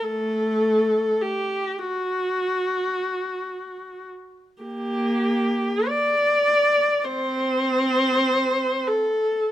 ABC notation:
X:1
M:4/4
L:1/8
Q:1/4=52
K:Cdor
V:1 name="Viola"
[A,A]2 G ^F4 z | [B,G]2 d2 [Cc]3 A |]